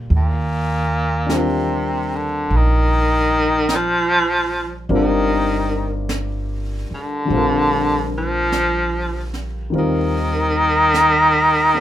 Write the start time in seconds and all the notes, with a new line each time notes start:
Already playing: C4 F4 A#4
0.10 D#2, brush sweep
0.16 A#2
1.26 G3 D4, brush sweep, snare, hi-hat pedal
1.31 C4 F4
1.37 C3 A#4
2.16 D3
2.49 A#1, brush sweep
2.56 D#3
3.69 brush sweep, snare, hi-hat pedal
3.75 F3
4.89 G1 G3 C4 D4 F4 A#4, brush sweep
4.95 D#3
6.09 brush sweep, snare, hi-hat pedal
6.91 D3, muted upright bass stroke
7.25 D3 G3
7.30 A#1 C4 F4, brush sweep
7.36 A#4
8.18 F3
8.52 brush sweep, snare, hi-hat pedal
9.34 snare
9.70 D#2 D#3 G3 C4, brush sweep
9.74 F4 A#4
9.79 D#3
10.94 brush sweep, snare, hi-hat pedal
11.74 A#3 D4 G4